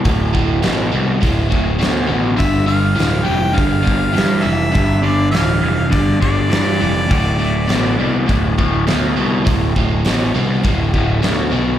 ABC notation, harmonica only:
X:1
M:4/4
L:1/8
Q:1/4=102
K:G
V:1 name="Harmonica"
z8 | e =f2 g f3 e- | e d =f2 d d3- | d4- d z3 |
z8 |]